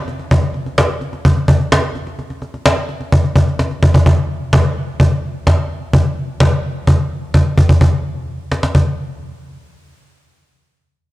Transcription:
0.08 cajon slap soft
0.19 cajon slap soft
0.31 cajon bass loud
0.43 cajon slap soft
0.54 cajon slap soft
0.66 cajon slap soft
0.78 cajon slap loud
0.89 cajon slap soft
1.01 cajon slap soft
1.13 cajon slap soft
1.25 cajon bass medium
1.37 cajon slap soft
1.48 cajon bass medium
1.60 cajon slap soft
1.72 cajon slap loud
1.84 cajon slap soft
1.95 cajon slap soft
2.07 cajon slap soft
2.19 cajon slap soft
2.30 cajon slap soft
2.42 cajon slap soft
2.54 cajon slap soft
2.66 cajon slap loud
2.77 cajon slap soft
2.89 cajon slap soft
3.01 cajon slap soft
3.12 cajon bass medium
3.24 cajon slap soft
3.36 cajon bass medium
3.47 cajon slap soft
3.59 cajon slap medium
3.71 cajon slap soft
3.83 cajon bass loud
3.94 cajon bass loud
4.06 cajon bass loud
4.53 cajon bass loud
4.53 cajon slap loud
5.00 cajon bass loud
5.47 cajon bass loud
5.47 cajon slap loud
5.94 cajon bass loud
6.40 cajon bass loud
6.40 cajon slap loud
6.87 cajon bass medium
7.34 cajon bass medium
7.34 cajon slap medium
7.58 cajon bass medium
7.69 cajon bass medium
7.81 cajon bass loud
8.52 cajon slap medium
8.63 cajon slap medium
8.75 cajon bass medium

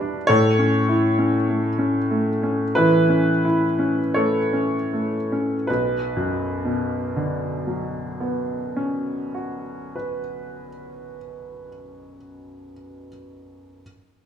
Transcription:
0.00 0.32 B2 soft
0.00 0.32 G3 soft
0.00 0.32 D4 soft
0.00 0.31 F#4 soft
0.00 0.26 B4 medium
0.00 0.29 E5 medium
0.27 2.71 A2 medium
0.27 2.70 A4 medium
0.27 2.74 C#5 medium
0.59 1.06 C#4 soft
0.89 1.36 E4 soft
1.19 1.67 C#4 soft
1.48 1.98 A3 soft
1.79 2.29 C#4 soft
2.11 2.62 A3 soft
2.43 2.95 C#4 soft
2.75 3.30 E3 soft
2.75 3.43 E4 soft
2.75 4.14 B4 medium
3.09 3.64 C#4 soft
3.45 4.00 E4 soft
3.79 4.36 C#4 soft
4.14 4.76 A3 soft
4.14 5.64 A4 soft
4.14 5.68 C#5 medium
4.53 5.15 C#4 soft
4.93 5.54 A3 soft
5.32 5.69 C#4 soft
5.67 10.20 B1 soft
5.67 9.94 B4 medium
6.17 10.67 F#2 soft
6.65 11.15 B2 soft
7.16 11.66 D3 soft
7.67 12.17 F#3 soft
8.21 12.71 B3 soft
8.76 13.08 C#4 soft
9.34 13.08 F#4 soft
9.96 13.08 B4 soft

